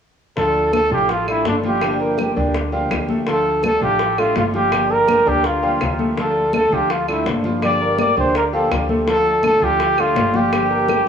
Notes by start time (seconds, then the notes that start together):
0.36 D2 D3 F3 A3 D4 F4 A4, high bongo, high conga
0.55 high conga
0.73 D3 A3 D4 F4 A4, high bongo, high conga, claves
0.91 A1 F3 A3 D4 F4 G4, high conga
1.09 F4, muted steel-string acoustic guitar stroke, high bongo, high conga
1.27 A3 D4 E4 F4 A4, high conga, claves
1.45 G1 D3 A3 D4 F4, high bongo, low bongo, high conga
1.64 F3 F4 G4, high conga
1.82 D3 F3 A#3 D4 G4, high bongo, high conga, claves
2.00 A#3 A#4, high bongo, high conga
2.18 F3 A#3 D4 G4, high bongo, high conga, claves
2.36 D2 F3 A#3 D4 G4 D5, high bongo
2.55 muted steel-string acoustic guitar stroke, high bongo, high conga
2.72 F3 A#3 D4 F4 G4 F5, high bongo, high conga
2.91 D2 F3 A#3 D4 G4, high bongo, low bongo, high conga, claves
3.09 A3 A4, high conga
3.27 D3 F3 A3 D4 F4 A4, high bongo, high conga
3.46 high conga
3.63 D3 A3 D4 F4 A4, high bongo, high conga, claves
3.82 A1 F3 A3 D4 F4 G4, high conga
3.99 muted steel-string acoustic guitar stroke, high bongo, high conga
4.18 A3 D4 F4 A4, high conga, claves
4.36 G1 D3 A3 D4 F4, high bongo, low bongo, high conga
4.54 F3 F4 G4, high conga
4.72 D3 F3 A#3 D4 G4, high bongo, claves
4.90 A#3 A#4, high bongo, high conga
5.08 F3 A#3 D4 G4, high bongo, high conga, claves
5.26 D2 F3 A#3 D4 G4 D5, high bongo
5.44 F4, muted steel-string acoustic guitar stroke, high bongo, high conga
5.62 F3 A#3 D4 F4 G4 F5, high bongo, high conga
5.80 D2 F3 A#3 G4, high bongo, low bongo, high conga, claves
5.99 A3 A4, high conga
6.17 D3 F3 A3 D4 F4 A4, high bongo
6.36 high conga
6.53 D3 A3 D4 F4 A4, high bongo, high conga, claves
6.71 D2 F3 A3 D4 F4 G4, high conga
6.89 F4, muted steel-string acoustic guitar stroke, high bongo, high conga
7.08 A3 D4 E4 F4 A4, high conga, claves
7.25 G1 D3 A3 D4 F4, high bongo, low bongo, high conga
7.44 F3 F4, high conga
7.62 D3 F3 A#3 D4 G4 D5, high bongo, high conga, claves
7.80 A#3 A#4, high bongo, high conga
7.98 F3 A#3 D4 G4 D5, high bongo, high conga, claves
8.17 D2 F3 A#3 D4 G4 C5 D5, high bongo
8.35 A#4, muted steel-string acoustic guitar stroke, high bongo, high conga
8.53 F3 A#3 D4 F4 G4 A4 F5, high bongo, high conga
8.71 D2 F3 A#3 D4 G4, high bongo, low bongo, high conga, claves
8.89 A3 A4, high conga
9.07 D3 F3 A3 D4 F4 A4, high bongo, high conga
9.25 high conga
9.43 D3 A3 D4 F4 A4, high bongo, high conga, claves
9.61 D2 F3 A3 D4 F4 G4, high conga
9.80 muted steel-string acoustic guitar stroke, high bongo, high conga
9.98 A3 D4 F4 A4, high conga, claves
10.16 G1 D3 A3 D4, high bongo, low bongo, high conga
10.34 F3 F4 G4, high conga
10.52 D3 F3 A#3 D4 G4, high bongo, high conga, claves
10.70 A#3 A#4, high bongo, high conga
10.88 F3 D4 G4, high bongo, high conga, claves